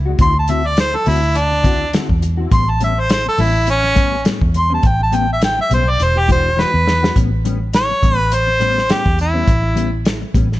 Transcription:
Already playing: fingered electric bass C#2
0.06 clean electric guitar G#3 D4 F#4
0.19 fingered electric bass D2, clean electric guitar D3 C4 E4 F#4, harmonica C6, kick, closed hi-hat
0.36 harmonica A5, muted clean electric guitar stroke
0.48 clean electric guitar D3 C4 E4 F#4, harmonica E5, closed hi-hat
0.64 harmonica D5, muted clean electric guitar stroke
0.77 harmonica C5, snare, closed hi-hat
0.94 harmonica A4, muted clean electric guitar stroke
1.06 fingered electric bass D2, clean electric guitar D3 C4 E4 F#4, harmonica E4, open hi-hat
1.23 muted clean electric guitar stroke
1.35 harmonica D4, muted clean electric guitar stroke, closed hi-hat
1.52 muted clean electric guitar stroke
1.63 clean electric guitar D3 C4 E4 F#4, kick, closed hi-hat
1.93 clean electric guitar D3 C4 E4 F#4, snare, closed hi-hat
2.09 fingered electric bass E2, muted clean electric guitar stroke, kick
2.21 muted clean electric guitar stroke, closed hi-hat
2.37 clean electric guitar C4 E4 F#4
2.50 fingered electric bass A1, clean electric guitar A2 G3 B3 C#4, harmonica C6, kick, closed hi-hat
2.66 harmonica A5, muted clean electric guitar stroke
2.80 clean electric guitar A2 G3 B3 C#4, closed hi-hat
2.84 harmonica E5
2.96 harmonica C5, muted clean electric guitar stroke
3.10 harmonica C5, snare, closed hi-hat
3.25 harmonica A4, muted clean electric guitar stroke
3.38 fingered electric bass A1, clean electric guitar A2 G3 B3 C#4, harmonica E4, open hi-hat
3.53 muted clean electric guitar stroke
3.66 muted clean electric guitar stroke, closed hi-hat
3.70 harmonica C#4
3.83 muted clean electric guitar stroke
3.95 clean electric guitar A2 G3 B3 C#4, kick, closed hi-hat
4.24 clean electric guitar A2 G3 B3 C#4, snare, closed hi-hat
4.41 fingered electric bass E2, muted clean electric guitar stroke, kick
4.54 harmonica C6, muted clean electric guitar stroke, closed hi-hat
4.70 clean electric guitar G3 B3 C#4
4.74 harmonica A5
4.83 fingered electric bass A1, kick, closed hi-hat
4.87 harmonica G5
5.00 harmonica A5, muted clean electric guitar stroke
5.11 clean electric guitar A2 G3 B3 C#4, closed hi-hat
5.16 harmonica G5
5.28 muted clean electric guitar stroke
5.33 harmonica E5
5.42 harmonica G5, snare, closed hi-hat
5.58 harmonica E5, muted clean electric guitar stroke
5.69 fingered electric bass B1, clean electric guitar A2 G3 B3 C#4, closed hi-hat
5.74 harmonica C5
5.86 harmonica D5, muted clean electric guitar stroke
5.99 fingered electric bass E1, muted clean electric guitar stroke, closed hi-hat
6.03 harmonica C5
6.15 harmonica G4, muted clean electric guitar stroke
6.28 clean electric guitar E3 G#3 D4 F#4, harmonica C5, kick, closed hi-hat
6.56 clean electric guitar E3 G#3 D4 F#4, snare
6.61 harmonica B4
6.73 fingered electric bass E2, muted clean electric guitar stroke
6.86 muted clean electric guitar stroke, snare
7.03 clean electric guitar G#3 D4 F#4, snare
7.15 fingered electric bass A1, clean electric guitar A2 G3 B3 C#4, kick, closed hi-hat
7.32 muted clean electric guitar stroke
7.45 clean electric guitar A2 G3 B3 C#4, closed hi-hat
7.60 muted clean electric guitar stroke
7.73 harmonica C#5, snare, closed hi-hat
7.90 muted clean electric guitar stroke
8.02 fingered electric bass A1, clean electric guitar A2 G3 B3 C#4, kick, closed hi-hat
8.17 harmonica B4, muted clean electric guitar stroke
8.32 harmonica C5, muted clean electric guitar stroke, closed hi-hat
8.47 muted clean electric guitar stroke
8.60 clean electric guitar A2 G3 B3 C#4, closed hi-hat
8.78 snare
8.89 clean electric guitar A2 G3 B3 C#4, harmonica G4, snare, closed hi-hat
9.05 fingered electric bass E2, muted clean electric guitar stroke, kick
9.18 harmonica E4, muted clean electric guitar stroke, closed hi-hat
9.34 clean electric guitar G3 B3 C#4
9.48 fingered electric bass A1, kick, closed hi-hat
9.62 muted clean electric guitar stroke
9.75 clean electric guitar A2 G3 B3 C#4, closed hi-hat
9.92 muted clean electric guitar stroke
10.05 snare, closed hi-hat
10.21 muted clean electric guitar stroke
10.34 fingered electric bass A1, clean electric guitar A2 G3 B3 C#4, kick, closed hi-hat
10.50 muted clean electric guitar stroke, snare

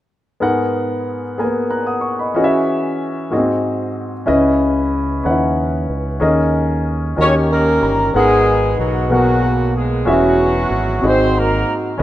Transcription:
0.40 grand piano G#2 B3 G#4 A#4 F#5
1.38 grand piano A#3 G#4 A#4 G#5
1.44 grand piano B3
1.70 grand piano A#5 F#6
1.87 grand piano F#5 D#6
2.01 grand piano C#6
2.19 grand piano D#5 B5
2.35 grand piano E3 C#4 F#4 G#4 D#5
2.44 grand piano E5
3.30 grand piano G#2 A#3 F#4 G#4 D#5
3.37 grand piano C4
4.26 fingered electric bass C#2, grand piano C#3 C#4 E4 B4 D#5
5.23 fingered electric bass D#2, grand piano C#4 D#4 B4 F#5
5.31 grand piano E4
5.89 fingered electric bass C#2
6.20 fingered electric bass D#2, grand piano D#3 C#4 G#4 A#4 D#5
7.16 fingered electric bass D#2, grand piano D#3 C#4 F#4 A#4 D#5
7.21 horn section C#4 G4 A#4 C#5, grand piano G4
7.51 horn section A#3 C#4 G4 A#4, grand piano D#5
7.82 fingered electric bass G1, grand piano A#5
8.14 fingered electric bass G#1, grand piano G#2 B3 G#4 A#4 F#5, horn section G#3 B3 D#4 G#4
8.79 fingered electric bass B1, horn section F#3 F#4
9.10 grand piano B2 G#4 A#4 F#5, horn section F#3 A#3 B3 F#4
9.77 horn section G#3 G#4
10.05 fingered electric bass E1, grand piano E3 C#4 F#4 G#4 E5, horn section C#4
10.09 horn section F#3 B3 F#4
10.71 fingered electric bass G#1
11.01 fingered electric bass G#1, grand piano G#2 C4 F#4 G#4 D#5, horn section D#4 F#4
11.06 horn section C4 C5
11.39 horn section A#3 A#4
11.98 grand piano C#3 C#4 D#4 B4

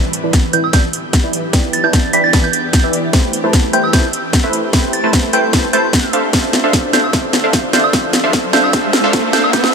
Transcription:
Already playing: sub bass E1, supersaw synth E3 E4 B4 D5 G5, ambient pad E3 B3 D4 G4
0.13 closed hi-hat
0.24 supersaw synth E3 E4 B4 D5 A5
0.33 kick, snare, closed hi-hat
0.53 supersaw synth E3 E4 B4 D5 G5, synth bell G6, closed hi-hat
0.64 synth bell E6
0.73 supersaw synth E3 E4 B4 D5 A5, synth bell G6, kick, snare, closed hi-hat
0.93 sub bass G1, closed hi-hat
1.13 sub bass B1, kick, snare, closed hi-hat
1.24 supersaw synth E3 E4 B4 D5 E5
1.33 closed hi-hat
1.53 supersaw synth E3 E4 B4 D5 G5, kick, snare, closed hi-hat
1.73 synth bell A6, closed hi-hat
1.84 sub bass G1, supersaw synth E3 E4 B4 D5 A5, synth bell G6
1.93 kick, snare, closed hi-hat
2.13 supersaw synth E3 E4 B4 D5 G5, synth bell B6, closed hi-hat
2.24 synth bell A6
2.33 supersaw synth E3 E4 B4 D5 A5, kick, snare, closed hi-hat
2.44 synth bell G6
2.53 sub bass E2, closed hi-hat
2.73 sub bass E1, kick, snare, closed hi-hat
2.84 supersaw synth E3 E4 B4 D5 E5
2.93 closed hi-hat
3.13 sub bass A1, supersaw synth A3 E4 B4 C5 G5, ambient pad A3 C4, kick, snare, closed hi-hat
3.33 closed hi-hat
3.44 sub bass C2, supersaw synth A3 E4 B4 C5 A5
3.53 kick, snare, closed hi-hat
3.73 supersaw synth A3 E4 B4 C5 G5, synth bell G6, closed hi-hat
3.84 synth bell E6
3.93 sub bass E1, supersaw synth A3 E4 B4 C5 A5, synth bell G6, kick, snare, closed hi-hat
4.13 sub bass A1, closed hi-hat
4.33 kick, snare, closed hi-hat
4.44 supersaw synth A3 E4 B4 C5 E5
4.53 closed hi-hat
4.73 supersaw synth A3 E4 B4 C5 G5, kick, snare, closed hi-hat
4.93 synth bell A6, closed hi-hat
5.04 sub bass C2, supersaw synth A3 E4 B4 C5 A5
5.13 kick, snare, closed hi-hat
5.33 supersaw synth A3 E4 B4 C5 G5, synth bell G6, closed hi-hat
5.53 supersaw synth A3 E4 B4 C5 A5, kick, snare, closed hi-hat
5.73 sub bass D2, supersaw synth A3 E4 B4 C5 A5, synth bell G6, closed hi-hat
5.93 kick, snare, closed hi-hat
6.13 ambient pad D3 E4 F4, supersaw synth D4 A4 C5 E5 F5, closed hi-hat
6.33 sub bass D2, supersaw synth D4 A4 C5 E5 F5, kick, snare, closed hi-hat, riser
6.53 snare, closed hi-hat
6.64 supersaw synth D4 A4 C5 E5 F5
6.73 kick, snare, closed hi-hat
6.93 supersaw synth D4 A4 C5 E5 F5, synth bell G6, snare, closed hi-hat
7.04 synth bell E6
7.13 supersaw synth D4 A4 C5 E5 F5, kick, snare, closed hi-hat
7.33 sub bass F2, snare, closed hi-hat
7.44 supersaw synth D4 A4 C5 E5 F5
7.53 sub bass A1, kick, snare, closed hi-hat
7.73 supersaw synth D4 A4 C5 E5 F5, synth bell G6, snare, closed hi-hat
7.84 synth bell E6
7.93 supersaw synth D4 A4 C5 E5 F5, kick, snare, closed hi-hat
8.13 snare, closed hi-hat
8.24 sub bass F2, supersaw synth D4 A4 C5 E5 F5
8.33 kick, snare, closed hi-hat
8.53 supersaw synth D4 A4 C5 E5 F5, synth bell G6, snare, closed hi-hat
8.64 synth bell E6
8.73 supersaw synth D4 A4 C5 E5 F5, kick, snare, closed hi-hat
8.93 sub bass D1, snare, closed hi-hat
9.04 supersaw synth D4 A4 C5 E5 F5
9.13 sub bass D2, kick, snare, closed hi-hat
9.33 supersaw synth D4 A4 C5 E5 F5, synth bell G6, snare, closed hi-hat
9.44 synth bell E6
9.53 sub bass C2, supersaw synth D4 A4 C5 E5, synth bell G6, kick, snare, closed hi-hat
9.64 synth bell E6, snare

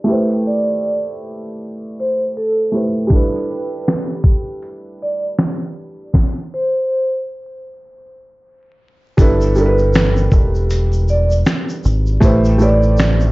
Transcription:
0.04 felt piano A3 E4
0.08 felt piano G4 B4
0.12 felt piano C5
0.47 vibraphone D5
2.00 vibraphone C5
2.37 vibraphone A4
2.72 felt piano A3 E4 G4 B4 C5
3.07 felt piano G3 D4 E4, kick, closed hi-hat
3.13 felt piano A4 B4
3.51 vibraphone B4
3.88 finger snap, snare, closed hi-hat
4.24 kick
4.62 closed hi-hat
5.02 vibraphone D5
5.39 finger snap, snare, closed hi-hat
6.14 kick, snare
6.54 vibraphone C5
9.17 fingered electric bass G1, felt piano G3 D4 E4 A4, kick, closed hi-hat, shaker
9.21 felt piano B4
9.41 shaker
9.55 felt piano G3 D4, shaker
9.58 felt piano E4 A4 A#4, vibraphone B4, shaker
9.66 felt piano B4
9.78 shaker
9.94 closed hi-hat, shaker
9.95 finger snap, snare, shaker
10.16 shaker
10.31 fingered electric bass E1, kick, shaker
10.55 shaker
10.70 closed hi-hat, shaker
10.93 shaker
11.08 vibraphone D5, shaker
11.30 shaker
11.46 finger snap, snare, closed hi-hat, shaker
11.69 shaker
11.84 fingered electric bass G#1, shaker
11.86 shaker
12.06 shaker
12.20 fingered electric bass A1, felt piano A3 E4 G4 B4, kick, closed hi-hat, shaker
12.25 felt piano C5
12.44 shaker
12.58 felt piano A3 E4 G4, shaker
12.61 felt piano B4 C#5, vibraphone D5, shaker
12.69 felt piano D5
12.83 shaker
12.97 closed hi-hat, shaker
12.99 finger snap, snare, shaker
13.20 shaker

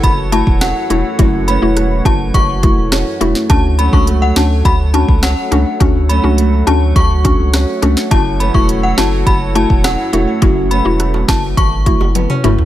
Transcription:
Already playing: nylon-string guitar F#2 E3 A3 C#4, analog synth pad E4 F#4 A4 C#5 F#5
0.03 sub bass F#1, synth bell B5, kick, closed hi-hat, high bongo
0.32 synth pluck A3 E4 F#4, synth bell A5, closed hi-hat
0.47 sub bass E1, kick
0.61 nylon-string guitar C#4, synth bell F#5, cross-stick, snare, closed hi-hat, high bongo
0.90 sub bass E1, synth pluck A3 E4 F#4, nylon-string guitar A3, closed hi-hat, low bongo
1.19 sub bass F#1, nylon-string guitar F#2, synth pluck A3 E4 F#4, kick, closed hi-hat, high bongo
1.48 nylon-string guitar E3 A3 C#4, synth bell B5, closed hi-hat
1.62 sub bass E1, synth pluck A3 E4 F#4
1.77 nylon-string guitar A3, cross-stick, closed hi-hat
2.05 sub bass F#1, synth pluck A3 E4 F#4, synth bell A5, kick, closed hi-hat, high bongo
2.34 sub bass F#1, synth bell C#6, kick, closed hi-hat, high bongo
2.63 synth pluck A3 E4 F#4, kick, closed hi-hat
2.78 sub bass E1
2.92 nylon-string guitar C#4, cross-stick, snare, closed hi-hat, high bongo
3.21 sub bass E1, synth pluck A3 E4 F#4, nylon-string guitar A3, closed hi-hat, low bongo
3.35 snare
3.50 sub bass D2, analog synth pad A3 A4 F#5, synth pluck C#4 D4 F#4, synth bell A5, kick, closed hi-hat, high bongo
3.79 nylon-string guitar F#3 A3 C#4, synth bell B5, closed hi-hat
3.93 sub bass C#2, synth pluck C#4 D4 F#4, synth bell C#6, kick
4.07 nylon-string guitar A3, closed hi-hat
4.22 synth bell F#5
4.36 sub bass D2, synth pluck C#4 D4 F#4, synth bell A5, snare, closed hi-hat, high bongo
4.65 sub bass D2, synth bell B5, kick, closed hi-hat, high bongo
4.94 synth pluck C#4 D4 F#4, synth bell A5, closed hi-hat
5.08 sub bass C#2, kick
5.23 nylon-string guitar C#4, synth bell F#5, cross-stick, snare, closed hi-hat, high bongo
5.51 sub bass C#2, nylon-string guitar A3, synth pluck C#4 D4 F#4, closed hi-hat, low bongo
5.80 sub bass D2, synth pluck C#4 D4 F#4, kick, closed hi-hat, high bongo
6.09 nylon-string guitar F#3 A3 C#4, synth bell B5, closed hi-hat
6.23 sub bass C#2, synth pluck C#4 D4 F#4
6.38 nylon-string guitar A3, closed hi-hat
6.67 sub bass D2, synth pluck C#4 D4 F#4, synth bell A5, closed hi-hat, high bongo
6.96 sub bass D2, synth bell C#6, kick, closed hi-hat, high bongo
7.24 synth pluck C#4 D4 F#4, kick, closed hi-hat
7.39 sub bass C#2
7.54 nylon-string guitar C#4, cross-stick, snare, closed hi-hat, high bongo
7.82 sub bass C#2, nylon-string guitar A3, synth pluck C#4 D4 F#4, closed hi-hat, low bongo
7.97 snare
8.11 sub bass F#1, nylon-string guitar F#2, synth pluck A3 E4 F#4, analog synth pad E4 F#4 A4 C#5 F#5, synth bell A5, kick, closed hi-hat, high bongo
8.40 nylon-string guitar E3 A3 C#4, synth bell B5, closed hi-hat
8.54 sub bass E1, synth pluck A3 E4 F#4, synth bell C#6, kick
8.69 nylon-string guitar A3, closed hi-hat
8.83 synth bell F#5
8.97 sub bass F#1, synth pluck A3 E4 F#4, synth bell A5, snare, closed hi-hat, high bongo
9.26 sub bass F#1, synth bell B5, kick, closed hi-hat, high bongo
9.55 synth pluck A3 E4 F#4, synth bell A5, closed hi-hat
9.70 sub bass E1, kick
9.84 nylon-string guitar C#4, synth bell F#5, cross-stick, snare, closed hi-hat, high bongo
10.13 sub bass E1, synth pluck A3 E4 F#4, nylon-string guitar A3, closed hi-hat, low bongo
10.42 sub bass F#1, nylon-string guitar F#2, synth pluck A3 E4 F#4, kick, closed hi-hat, high bongo
10.71 nylon-string guitar E3 A3 C#4, synth bell B5, closed hi-hat
10.85 sub bass E1, synth pluck A3 E4 F#4
11.00 nylon-string guitar A3, cross-stick, closed hi-hat
11.14 high bongo
11.28 sub bass F#1, synth pluck A3 E4 F#4, synth bell A5, kick, snare, closed hi-hat, high bongo
11.57 sub bass G#1, synth bell C#6, kick, closed hi-hat, high bongo
11.86 synth pluck A3 E4 F#4, kick, closed hi-hat
12.01 sub bass F#1, high bongo
12.15 nylon-string guitar B3, closed hi-hat, high tom, high bongo
12.30 nylon-string guitar C#4, mid tom, high bongo
12.44 sub bass F#1, synth pluck A3 E4 F#4, nylon-string guitar A3, closed hi-hat, mid tom, low bongo
12.58 floor tom

